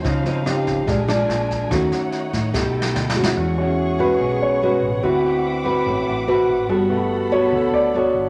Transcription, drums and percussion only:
0.05 kick, snare
0.26 snare
0.46 cross-stick, snare
0.67 kick, snare
0.88 kick, snare
1.09 cross-stick, snare
1.30 snare
1.50 kick, snare
1.71 kick, cross-stick, snare
1.92 snare
2.12 snare
2.33 kick, snare
2.54 kick, snare
2.82 snare
2.96 snare
3.10 snare
3.23 snare

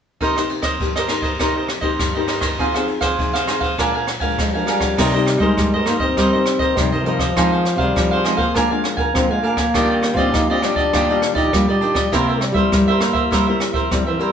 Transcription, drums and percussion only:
0.21 kick, ride
0.37 cross-stick
0.49 ride
0.62 kick, cross-stick, ride
0.80 kick, ride
0.96 cross-stick
1.08 cross-stick, ride
1.22 kick, ride
1.40 kick, cross-stick, ride
1.68 cross-stick, ride
1.82 kick, ride
1.99 kick, cross-stick, ride
2.28 cross-stick, ride
2.41 kick, cross-stick, ride
2.59 kick, ride
2.75 cross-stick
2.88 ride
3.01 kick, cross-stick, ride
3.19 kick, ride
3.35 cross-stick
3.48 cross-stick, ride
3.61 kick, ride
3.78 kick, cross-stick, ride
4.07 cross-stick, ride
4.21 kick, ride
4.39 kick, cross-stick, ride
4.67 cross-stick, ride
4.80 kick, cross-stick, ride
4.98 kick, cross-stick, crash
5.27 cross-stick, closed hi-hat
5.40 kick, closed hi-hat
5.57 kick, cross-stick, closed hi-hat
5.86 cross-stick, closed hi-hat
6.00 kick
6.17 kick, cross-stick, closed hi-hat
6.33 closed hi-hat
6.46 cross-stick, closed hi-hat
6.59 kick, closed hi-hat
6.77 kick, cross-stick, closed hi-hat
6.93 closed hi-hat
7.06 closed hi-hat
7.19 kick, cross-stick
7.37 kick, cross-stick, closed hi-hat
7.53 closed hi-hat
7.65 cross-stick, closed hi-hat
7.79 kick
7.96 kick, cross-stick, closed hi-hat
8.12 closed hi-hat
8.25 cross-stick, closed hi-hat
8.38 kick, closed hi-hat
8.56 kick, cross-stick, closed hi-hat
8.84 cross-stick, closed hi-hat
8.98 kick
9.15 kick, cross-stick, closed hi-hat
9.44 closed hi-hat
9.57 kick, cross-stick
9.74 kick, cross-stick, closed hi-hat
10.03 cross-stick, closed hi-hat
10.16 kick, closed hi-hat
10.34 kick, cross-stick, closed hi-hat
10.63 cross-stick, closed hi-hat
10.76 kick
10.93 kick, cross-stick, closed hi-hat
11.10 closed hi-hat
11.22 cross-stick, closed hi-hat
11.36 kick, closed hi-hat
11.53 kick, cross-stick, closed hi-hat
11.69 closed hi-hat
11.82 closed hi-hat
11.95 kick, cross-stick
12.13 kick, cross-stick, closed hi-hat
12.29 closed hi-hat
12.41 cross-stick, closed hi-hat
12.55 kick
12.72 kick, cross-stick, closed hi-hat
12.88 closed hi-hat
13.01 cross-stick, closed hi-hat
13.14 kick, closed hi-hat
13.32 kick, cross-stick, closed hi-hat
13.60 cross-stick, closed hi-hat
13.74 kick
13.91 kick, cross-stick, closed hi-hat
14.20 closed hi-hat

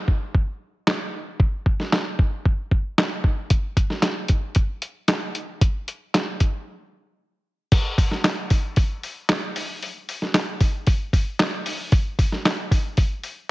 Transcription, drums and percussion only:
0.08 kick
0.35 kick
0.87 snare, clap
1.40 kick
1.66 kick
1.80 snare
1.93 snare, clap
2.19 kick
2.45 kick
2.71 kick
2.98 snare, clap
3.24 kick
3.50 kick, closed hi-hat
3.77 kick, closed hi-hat
3.90 snare
4.02 snare, clap, closed hi-hat
4.28 kick, closed hi-hat
4.55 kick, closed hi-hat
4.82 closed hi-hat
5.08 snare, clap, closed hi-hat
5.35 closed hi-hat
5.61 kick, closed hi-hat
5.88 closed hi-hat
6.14 snare, clap, closed hi-hat
6.40 kick, closed hi-hat
7.72 kick, open hi-hat, crash
7.98 kick, open hi-hat
8.11 snare
8.24 snare, clap, open hi-hat
8.50 kick, open hi-hat
8.76 kick, open hi-hat
9.03 open hi-hat
9.29 snare, clap, open hi-hat
9.56 open hi-hat
9.83 open hi-hat
10.09 open hi-hat
10.22 snare
10.34 snare, clap, open hi-hat
10.61 kick, open hi-hat
10.87 kick, open hi-hat
11.13 kick, open hi-hat
11.39 snare, clap, open hi-hat
11.66 open hi-hat
11.92 kick, open hi-hat
12.19 kick, open hi-hat
12.32 snare
12.45 snare, clap, open hi-hat
12.71 kick, open hi-hat
12.97 kick, open hi-hat
13.24 open hi-hat

